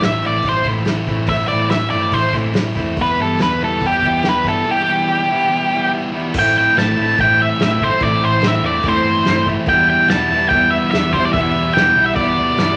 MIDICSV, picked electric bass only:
0, 0, Header, 1, 2, 480
1, 0, Start_track
1, 0, Key_signature, 0, "minor"
1, 0, Tempo, 422238
1, 1473, Time_signature, 4, 2, 24, 8
1, 6748, Tempo, 415800
1, 14633, End_track
2, 0, Start_track
2, 0, Title_t, "Picked electric bass"
2, 0, Program_c, 0, 34
2, 17, Note_on_c, 0, 33, 86
2, 225, Note_off_c, 0, 33, 0
2, 269, Note_on_c, 0, 33, 75
2, 472, Note_off_c, 0, 33, 0
2, 489, Note_on_c, 0, 33, 86
2, 701, Note_off_c, 0, 33, 0
2, 737, Note_on_c, 0, 33, 74
2, 946, Note_off_c, 0, 33, 0
2, 987, Note_on_c, 0, 33, 82
2, 1192, Note_off_c, 0, 33, 0
2, 1211, Note_on_c, 0, 33, 83
2, 1423, Note_off_c, 0, 33, 0
2, 1452, Note_on_c, 0, 33, 86
2, 1664, Note_off_c, 0, 33, 0
2, 1718, Note_on_c, 0, 33, 83
2, 1919, Note_off_c, 0, 33, 0
2, 1946, Note_on_c, 0, 33, 90
2, 2153, Note_off_c, 0, 33, 0
2, 2169, Note_on_c, 0, 43, 81
2, 2383, Note_off_c, 0, 43, 0
2, 2402, Note_on_c, 0, 33, 85
2, 2619, Note_off_c, 0, 33, 0
2, 2661, Note_on_c, 0, 33, 80
2, 2870, Note_off_c, 0, 33, 0
2, 2889, Note_on_c, 0, 33, 88
2, 3104, Note_off_c, 0, 33, 0
2, 3135, Note_on_c, 0, 40, 81
2, 3347, Note_off_c, 0, 40, 0
2, 3381, Note_on_c, 0, 28, 87
2, 3591, Note_off_c, 0, 28, 0
2, 3617, Note_on_c, 0, 31, 84
2, 3828, Note_off_c, 0, 31, 0
2, 3874, Note_on_c, 0, 28, 91
2, 4079, Note_off_c, 0, 28, 0
2, 4096, Note_on_c, 0, 28, 83
2, 4308, Note_off_c, 0, 28, 0
2, 4344, Note_on_c, 0, 28, 91
2, 4552, Note_off_c, 0, 28, 0
2, 4571, Note_on_c, 0, 28, 79
2, 4785, Note_off_c, 0, 28, 0
2, 4848, Note_on_c, 0, 28, 82
2, 5046, Note_off_c, 0, 28, 0
2, 5055, Note_on_c, 0, 31, 80
2, 5266, Note_off_c, 0, 31, 0
2, 7223, Note_on_c, 0, 33, 87
2, 7569, Note_off_c, 0, 33, 0
2, 7711, Note_on_c, 0, 33, 93
2, 7883, Note_off_c, 0, 33, 0
2, 7948, Note_on_c, 0, 33, 84
2, 8121, Note_off_c, 0, 33, 0
2, 8189, Note_on_c, 0, 33, 96
2, 8532, Note_off_c, 0, 33, 0
2, 8657, Note_on_c, 0, 33, 86
2, 9005, Note_off_c, 0, 33, 0
2, 9141, Note_on_c, 0, 33, 92
2, 9316, Note_off_c, 0, 33, 0
2, 9402, Note_on_c, 0, 33, 85
2, 9570, Note_off_c, 0, 33, 0
2, 9622, Note_on_c, 0, 33, 98
2, 9797, Note_off_c, 0, 33, 0
2, 9847, Note_on_c, 0, 40, 81
2, 10027, Note_off_c, 0, 40, 0
2, 10100, Note_on_c, 0, 40, 94
2, 10275, Note_off_c, 0, 40, 0
2, 10340, Note_on_c, 0, 31, 88
2, 10515, Note_off_c, 0, 31, 0
2, 10598, Note_on_c, 0, 43, 89
2, 10937, Note_off_c, 0, 43, 0
2, 11064, Note_on_c, 0, 28, 91
2, 11407, Note_off_c, 0, 28, 0
2, 11562, Note_on_c, 0, 28, 101
2, 11729, Note_off_c, 0, 28, 0
2, 11787, Note_on_c, 0, 28, 84
2, 11959, Note_off_c, 0, 28, 0
2, 12031, Note_on_c, 0, 28, 96
2, 12372, Note_off_c, 0, 28, 0
2, 12511, Note_on_c, 0, 28, 90
2, 12851, Note_off_c, 0, 28, 0
2, 12993, Note_on_c, 0, 28, 92
2, 13162, Note_off_c, 0, 28, 0
2, 13207, Note_on_c, 0, 28, 87
2, 13386, Note_off_c, 0, 28, 0
2, 13453, Note_on_c, 0, 28, 99
2, 13629, Note_off_c, 0, 28, 0
2, 13704, Note_on_c, 0, 35, 84
2, 13876, Note_off_c, 0, 35, 0
2, 13937, Note_on_c, 0, 35, 92
2, 14112, Note_off_c, 0, 35, 0
2, 14166, Note_on_c, 0, 38, 81
2, 14344, Note_off_c, 0, 38, 0
2, 14406, Note_on_c, 0, 31, 91
2, 14633, Note_off_c, 0, 31, 0
2, 14633, End_track
0, 0, End_of_file